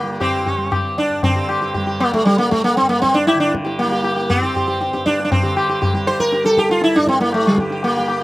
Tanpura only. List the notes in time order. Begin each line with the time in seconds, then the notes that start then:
Already playing: G2 D3 G3
0.03 G3
0.57 G3
1.09 G2
1.24 D3
1.77 G3
2.30 G3
2.81 G2
3.34 D3
3.87 G3
4.37 G3
4.90 G2
5.41 D3
5.93 G3
6.45 G3
6.97 G2
7.48 D3
7.99 G3